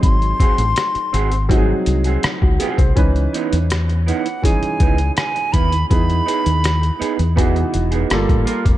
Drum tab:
HH |xxxxxxxxx-xxx-xx|xxxxxxxxxxxxxxxx|xxxxxxxxxxxxxxxx|
SD |----r-------r---|----r-------r---|----r-------r---|
BD |o-o-----o----o-o|o-------o-o---o-|o-------o----o-o|